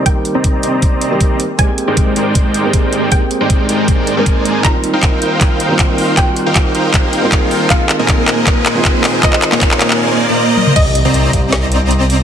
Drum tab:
CC |----------------|----------------|----------------|----------------|
HH |x-x-x-x-x-x-x-x-|x-x-x-x-x-x-x-x-|x-x-x-x-x-x-x-x-|x-x-x-x-x-x-x-o-|
CP |----------------|----------------|----------------|x---x---x---x---|
SD |----------------|----------------|----------------|----------------|
T1 |----------------|----------------|----------------|----------------|
T2 |----------------|----------------|----------------|----------------|
BD |o---o---o---o---|o---o---o---o---|o---o---o---o---|o---o---o---o---|

CC |----------------|----------------|----------------|x---------------|
HH |x-x-x-x-x-x-x-o-|x-x-x-x-x-x-x-o-|x-x-x-x---------|x-x-x-x-x-x-x-o-|
CP |x---x---x---x---|x-x-x-x-x-x-x-x-|xxxxxxxx--------|----------------|
SD |----------------|----------------|----------------|--------o-------|
T1 |----------------|----------------|--------------o-|----------------|
T2 |----------------|----------------|---------------o|----------------|
BD |o---o---o---o---|o---o---o---o---|o---o-----------|o-----o---------|